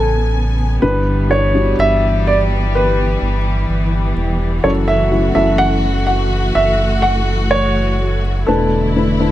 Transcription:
Already playing: A1 C#3 B3 A4 G#5
0.82 G1 G2 D3 E3 G3 D4 E4 B4
1.30 G3 D4 E4 C#5
1.54 G3 D4 E4 F#4
1.78 G1 E5
2.27 D5
2.75 B4
3.21 G1
3.69 G1
4.16 E1
4.63 F#1 C#3 F#3 A3 C#4 E4 F#4 A4 C#5
4.88 E5
5.11 F#3 C#4 E4 F#4
5.35 F#1 F#3 C#4 E4 A4 E5
5.58 F#5
6.07 F#5
6.55 F#1 E5
7.02 F#5
7.51 C#5
8.47 E1 B2 D3 A3 D4 E4 A4 B4
8.96 A3 D4 E4 B4
9.20 A3 D4 E4 B4

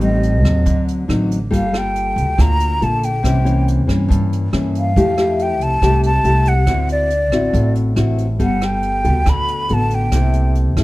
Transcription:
Already playing: A1 A2
0.00 G3 C4 D#4 D#5, closed hi-hat
0.23 closed hi-hat
0.43 D#2 F#3 C4, cross-stick, closed hi-hat
0.66 D2 D3, kick, closed hi-hat
0.88 closed hi-hat
1.08 A1 F#3 C4 D#4, cross-stick, closed hi-hat
1.31 closed hi-hat
1.51 G1 G3 A#3 F4 A4, kick, closed hi-hat
1.56 F5
1.72 A#3 F4 A4, cross-stick, closed hi-hat
1.78 G5
1.95 closed hi-hat
2.16 D2, closed hi-hat
2.37 D2 D3 A#3 F4 A#5, kick, cross-stick, closed hi-hat
2.60 closed hi-hat
2.81 A#1 A#3 F4 A4 A5, closed hi-hat
3.03 G5, closed hi-hat
3.23 C2 C3 E3 A#3 C#4, kick, cross-stick, closed hi-hat
3.44 E3 A#3 C#4, closed hi-hat
3.68 closed hi-hat
3.87 G2 E3 A#3 C#4, kick, cross-stick, closed hi-hat
4.09 G2, kick, closed hi-hat
4.32 closed hi-hat
4.53 G2 E3 A#3 C#4, cross-stick, closed hi-hat
4.75 F5, closed hi-hat
4.96 F2 F3 A3 E4 G4, kick, closed hi-hat
5.17 A3 E4 G4, cross-stick, closed hi-hat
5.39 G5, closed hi-hat
5.60 C2 A5, closed hi-hat
5.82 C2 C3 A3 E4 G4, kick, cross-stick, closed hi-hat
6.03 A5, closed hi-hat
6.24 C2 A3 E4 G4, closed hi-hat
6.46 F#5, closed hi-hat
6.67 D2 D3 C4 E4 F#4, kick, cross-stick, closed hi-hat
6.88 D5, closed hi-hat
7.10 closed hi-hat
7.31 A1 C4 E4 F#4, cross-stick, closed hi-hat
7.53 A1 A2, kick, closed hi-hat
7.75 closed hi-hat
7.96 A1 C4 E4 F#4, cross-stick, closed hi-hat
8.18 closed hi-hat
8.39 G1 G3 B3 A4 F#5, kick, closed hi-hat
8.62 G5, cross-stick, closed hi-hat
8.82 closed hi-hat
9.03 D2 B3 F#4 A4, closed hi-hat
9.25 D2 D3, kick, cross-stick, closed hi-hat
9.29 B5
9.48 closed hi-hat
9.69 A1 B3 F#4 A4, closed hi-hat
9.74 A5
9.90 closed hi-hat
9.95 G5
10.12 C2 C3 A#3 E4 A4, kick, cross-stick, closed hi-hat
10.33 closed hi-hat
10.55 closed hi-hat
10.77 G2 A#3 E4 A4, kick, cross-stick, closed hi-hat

